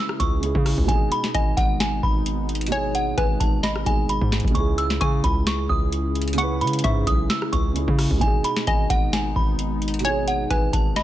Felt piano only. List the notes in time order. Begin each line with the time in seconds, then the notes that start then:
Already playing: C#3 G#3 E4 B4
0.41 C#3 G#3 E4
0.45 G#4
0.84 B2 G#3
0.90 D#4 G#4
2.67 B2 G#3
2.74 D#4 G#4
3.84 B2 G#3 D#4
3.89 G#4
4.51 C#3 G#3
4.57 E4 G#4
6.34 C#3 G#3
6.40 E4 B4
7.73 C#3 G#3 E4
7.78 G#4
8.17 B2 G#3
8.23 D#4 G#4
10.00 B2 G#3
10.06 D#4 G#4